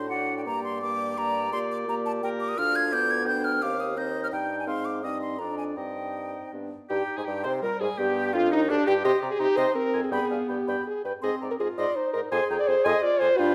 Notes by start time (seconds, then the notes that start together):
Already playing: A2
0.09 D4 F#4 D5 F#5
0.38 G5
0.46 G2 A#3 G4 D5 A#5
0.64 C6
0.82 A#3 G4 D6
1.18 A#3 G4 A#5
1.53 A#2 A#3 G4 C6
1.71 D6
1.88 A#3 G4 A#5
2.06 A5
2.23 A#3 G4 A#4 G5
2.40 D6
2.49 D#6
2.57 D2 D4 F4 F5 F6
2.76 G#6
2.92 B3 D5 G6
3.11 G#6
3.26 D4 G5 G6
3.44 F6
3.62 D#2 C4 G4 F5 D6
3.80 D#6
3.97 C4 D#4 D#5 G6
4.24 F6
4.32 G2 D#4 G5
4.59 G#5
4.67 G#2 C4 F5 C6
4.85 D6
5.03 G2 C4 D#4 D#5 D#6
5.22 C6
5.39 F2 D4 D5 A#5
5.58 G#5
5.76 G2 C4 D#4 D#5 G5
6.53 G2 B3 D4
6.89 G2 D#4 G4
7.17 G#2 G#4
7.25 G2 G4
7.43 C3 C5
7.62 A#2 G3 A#4
7.80 G#2 G#4
7.98 G2 B3 G4
8.33 F2 D4 F4
8.51 D#2 D#4
8.69 D2 D4 G4
8.87 G2 G4
9.04 C3 G4 D#5 C6
9.21 C3 D5 A#5
9.31 G#4
9.39 C3 D#4 G4 D#5 C6
9.57 C3 C5 D#5 C6
9.74 C4 A#4
9.93 F2 G#5 C6
10.04 G#4
10.12 G2 B3 G#4 G5 B5
10.30 G2 F5 G#5
10.48 G2 G4 G5 B5
10.67 G2 G5 B5
10.87 G#4
11.04 G2 B4 G5 B5
11.22 G#2 C4 G#4 D#5 C6
11.41 G#2 D5 A#5
11.51 A#4
11.59 G#2 F4 G#4 D#5 C6
11.78 G#2 D5 D#5 C6
11.96 D#4 C5
12.13 G#2 A#4 D#5 C6
12.31 F2 G#4 C5 G#5 C6
12.50 F2 G5 A#5
12.59 D5
12.67 F2 C5 G#5 C6
12.84 F2 D#5 G#5 C6
13.03 F4 D5
13.20 F2 C5 G#5 C6
13.37 G2 D4 F4 G5 B5